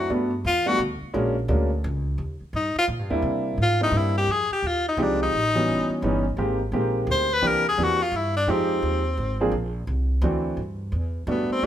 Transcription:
0.00 0.11 F#4 medium
0.10 0.43 G2 medium
0.10 0.30 G3 medium
0.10 0.30 A3 medium
0.10 0.30 B3 medium
0.10 0.30 D4 medium
0.10 0.30 F#4 medium
0.45 0.78 E2 medium
0.45 0.70 F4 loud
0.66 0.78 G3 medium
0.66 0.78 A3 medium
0.66 0.78 B3 medium
0.66 0.78 D4 medium
0.66 0.78 F#4 medium
0.66 0.80 F#4 loud
0.78 0.99 D2 loud
1.02 muted upright bass stroke soft
1.14 1.48 A#1 medium
1.14 1.34 G#3 medium
1.14 1.34 A#3 medium
1.14 1.34 C#4 medium
1.14 1.34 D4 medium
1.14 1.34 F#4 medium
1.48 1.82 D2 loud
1.48 1.69 G#3 medium
1.48 1.69 A#3 medium
1.48 1.69 C#4 medium
1.48 1.69 D4 medium
1.48 1.69 F#4 medium
1.84 2.17 C#2 loud
2.18 2.39 D#2 medium
2.41 muted upright bass stroke soft
2.53 2.74 G2 medium
2.53 2.75 D#4 medium
2.75 2.85 F4 loud
2.75 muted upright bass stroke soft
2.88 2.99 A#2 medium
2.99 3.10 G2 soft
3.10 3.22 D#2 medium
3.10 3.56 G3 medium
3.10 3.55 A#3 medium
3.10 3.55 C4 medium
3.10 3.56 D4 medium
3.10 3.56 E4 medium
3.22 3.57 C3 medium
3.58 3.91 G#2 medium
3.62 3.81 F4 loud
3.81 4.26 G3 medium
3.81 4.26 A#3 medium
3.81 4.26 C4 medium
3.81 4.26 D4 medium
3.81 3.99 D#4 loud
3.81 4.26 E4 medium
3.91 4.26 G2 loud
3.98 4.17 E4 medium
4.17 4.33 G4 loud
4.27 4.48 F2 medium
4.27 4.52 G#4 loud
4.50 4.69 G4 medium
4.50 muted upright bass stroke soft
4.63 4.97 D#2 medium
4.67 4.87 F4 loud
4.88 5.04 D#4 medium
4.97 5.31 C2 loud
4.97 5.33 F3 medium
4.97 5.33 G#3 medium
4.97 5.33 C4 medium
4.97 5.33 D#4 medium
4.97 5.33 G4 medium
5.02 5.22 D4 medium
5.23 6.00 D#4 loud
5.32 5.66 A1 medium
5.55 6.00 E3 medium
5.55 6.00 G3 medium
5.55 6.00 B3 medium
5.55 6.00 C#4 medium
5.55 6.01 F#4 medium
5.67 5.88 F#1 medium
5.89 muted upright bass stroke soft
6.02 6.36 G1 loud
6.02 6.23 E3 medium
6.02 6.23 G3 medium
6.02 6.23 B3 medium
6.02 6.23 C#4 medium
6.02 6.24 D#4 medium
6.37 6.71 G#1 medium
6.37 6.58 D#3 medium
6.37 6.58 G#3 medium
6.37 6.58 A#3 medium
6.37 6.58 C4 medium
6.37 6.58 G4 medium
6.72 7.06 A#1 medium
6.72 7.26 D#3 medium
6.72 7.26 G#3 medium
6.72 7.26 A#3 medium
6.72 7.26 C4 medium
6.72 7.26 G4 medium
7.07 7.41 D2 loud
7.11 7.35 C5 medium
7.33 7.48 B4 loud
7.42 7.76 C2 medium
7.42 7.62 E3 medium
7.42 7.62 A#3 medium
7.42 7.63 C4 medium
7.42 7.62 D4 medium
7.42 7.62 G4 medium
7.47 7.67 A#4 medium
7.69 7.84 G#4 medium
7.77 8.11 E2 medium
7.77 7.98 E3 medium
7.77 7.98 A#3 medium
7.77 7.98 C4 medium
7.77 7.98 D4 medium
7.77 7.98 G4 medium
7.83 8.04 F#4 medium
8.03 8.17 F4 medium
8.12 8.46 G2 loud
8.16 8.36 E4 medium
8.36 8.52 D4 medium
8.47 8.81 F2 medium
8.47 9.00 F3 medium
8.47 9.00 G#3 medium
8.47 9.01 C4 medium
8.47 9.54 C4 medium
8.47 9.00 D#4 medium
8.47 9.01 G4 medium
8.82 9.16 D#2 medium
9.17 9.51 G#1 loud
9.40 9.52 F3 medium
9.40 9.52 A#3 medium
9.40 9.52 C4 medium
9.40 9.52 D4 medium
9.40 9.52 G#4 medium
9.52 9.86 A#1 medium
9.87 10.21 C2 medium
10.22 10.56 D2 loud
10.22 10.58 E3 medium
10.22 10.58 A3 medium
10.22 10.58 C4 medium
10.22 10.58 D4 medium
10.22 10.58 F#4 medium
10.57 10.91 G2 medium
10.92 11.26 E2 medium
11.27 11.48 F#2 loud
11.27 11.63 G3 medium
11.27 11.63 A3 medium
11.27 11.62 B3 medium
11.27 11.50 B3 medium
11.27 11.62 D4 medium
11.27 11.62 F#4 medium
11.49 11.66 C4 medium
11.49 muted upright bass stroke soft
11.62 11.66 E2 medium
11.62 11.66 G#3 medium
11.62 11.66 B3 medium
11.62 11.66 C#4 medium
11.62 11.66 D4 medium

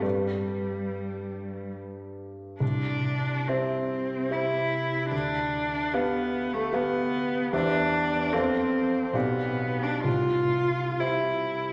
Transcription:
0.00 2.55 G2 soft
0.00 1.75 G3 soft
0.00 2.56 G4 soft
0.00 2.56 B4 soft
0.00 2.57 D5 soft
2.60 3.45 C2 soft
2.60 3.50 D4 medium
3.48 4.34 C4 soft
3.48 4.28 G4 soft
3.48 4.28 C5 soft
3.48 4.28 E5 soft
4.30 5.11 E4 medium
4.30 5.08 G4 soft
4.30 5.08 C5 soft
4.30 5.08 E5 soft
5.12 5.90 D2 soft
5.12 5.95 D4 medium
5.93 6.55 B3 medium
5.93 6.69 G4 soft
5.93 6.69 B4 soft
5.93 6.69 F5 soft
6.54 6.75 A3 medium
6.72 7.53 B3 medium
6.72 7.48 G4 soft
6.72 7.49 B4 soft
6.72 7.49 F5 soft
7.53 8.30 E2 soft
7.53 8.35 D4 medium
7.53 8.29 G4 soft
7.53 8.29 C5 soft
7.53 8.29 E5 soft
8.33 9.12 F2 soft
8.33 9.17 C4 medium
8.33 9.11 A4 soft
8.33 9.11 C5 soft
8.33 9.11 F5 soft
9.13 10.02 B1 soft
9.13 9.84 B3 medium
9.13 10.01 G4 soft
9.13 10.01 D5 soft
9.13 10.02 F5 soft
9.83 10.04 D4 soft
10.04 10.97 C2 soft
10.04 11.01 F4 medium
10.99 11.73 E4 soft
10.99 11.73 G4 soft
10.99 11.73 C5 soft
10.99 11.73 E5 soft

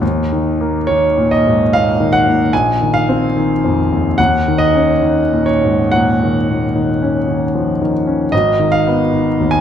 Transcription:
0.01 2.48 D#2 medium
0.32 0.78 D#3 soft
0.61 1.05 A#3 soft
0.87 1.33 D#3 soft
0.87 1.29 C#5 medium
1.18 1.61 A#2 soft
1.31 1.72 D#5 medium
1.47 1.73 G#2 soft
1.73 2.16 A#2 soft
1.73 2.13 F5 medium
2.00 2.42 D#3 soft
2.13 2.52 F#5 medium
2.28 2.53 A#2 soft
2.53 4.15 A#1 soft
2.53 2.94 G#5 medium
2.81 3.24 D#3 soft
2.94 4.18 F5 medium
3.09 3.52 C4 soft
3.37 3.80 D#3 soft
3.64 4.08 F2 soft
3.92 4.18 D#2 soft
4.18 8.29 D#2 medium
4.18 4.59 F#5 medium
4.48 4.91 D#3 soft
4.58 5.46 D#5 medium
4.75 5.19 C#4 soft
5.03 5.50 D#3 soft
5.33 5.81 A#2 soft
5.46 5.92 C#5 medium
5.64 5.93 G#2 soft
5.91 6.37 A#2 soft
5.91 7.93 F#5 medium
6.23 6.65 D#3 soft
6.50 6.90 A#2 soft
6.76 7.17 D#3 soft
7.02 7.43 C#4 soft
7.29 7.70 D#3 soft
7.55 7.81 F3 soft
7.82 8.23 D#3 soft
8.07 8.33 C#4 soft
8.32 9.61 G#1 medium
8.32 8.72 D#5 medium
8.60 9.01 D#3 soft
8.72 9.51 F5 medium
8.87 9.28 B3 soft
9.14 9.55 D#3 soft
9.40 9.61 D#2 soft
9.51 9.61 G#5 medium

